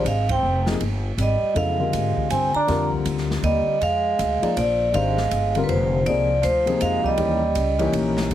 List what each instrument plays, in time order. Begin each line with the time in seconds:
0.04 upright bass G#1, trombone G#3, vibraphone F5, hi-hat pedal, ride
0.29 trombone C4, vibraphone G5, kick, ride
0.43 upright bass F1
0.66 upright piano C3 F3 A#3 D#4 G#4, snare
0.80 upright bass G1, ride
1.17 upright bass G#1, trombone G3, hi-hat pedal, ride
1.22 vibraphone D#5
1.42 muted upright bass stroke
1.54 upright bass F2, upright piano C#3 F#3 B3 E4 A4, trombone G#3, vibraphone F5, ride
1.79 upright piano D3 C4 F4 G4 A#4
1.93 upright bass G#2, hi-hat pedal, ride
2.17 muted upright bass stroke, kick
2.30 upright bass G2, trombone C4, vibraphone G#5, hi-hat pedal, ride
2.55 trombone D4, vibraphone A#5, muted upright bass stroke
2.67 upright bass F2, upright piano D3 G3 C4 F4 A#4, snare, ride
2.92 kick
3.05 upright bass D2, hi-hat pedal, ride
3.18 snare
3.31 snare
3.42 upright bass D#2, trombone G3, vibraphone D#5, ride
3.67 muted upright bass stroke
3.81 upright bass F2, trombone G#3, vibraphone F5, ride
4.19 upright bass D2, hi-hat pedal, ride
4.42 upright piano F3 A#3 D#4 G#4 D5, muted upright bass stroke, ride
4.55 upright bass A#1, trombone F3, vibraphone D5, hi-hat pedal, ride
4.92 upright bass G#1, upright piano D#3 G#3 D4 G4 C5, trombone G#3, vibraphone F5, ride
5.17 snare
5.31 upright bass G1, hi-hat pedal, ride
5.55 upright piano D3 G3 C4 F4 A#4, ride
5.63 trombone D3, vibraphone B4
5.68 upright bass F1, trombone F3, vibraphone C5, ride
6.05 upright bass C2, upright piano C3 F3 A#3 D#4 G#4, trombone F3, vibraphone D5, ride
6.42 upright bass D2, trombone F3, vibraphone C5, hi-hat pedal, ride
6.66 upright piano C3 F3 A#3 D#4 G#4, ride
6.81 upright bass F2, trombone G#3, vibraphone F5, hi-hat pedal, ride
7.04 trombone G3, vibraphone D#5, muted upright bass stroke, kick
7.17 upright bass D#2, upright piano E3 A#3 C#4 D#4 G4, ride
7.55 upright bass C#2, hi-hat pedal, ride
7.79 upright piano E3 A#3 C#4 D#4 G4, kick, ride
7.92 upright bass A#1, ride
8.17 snare
8.30 upright bass G#1, upright piano D3, ride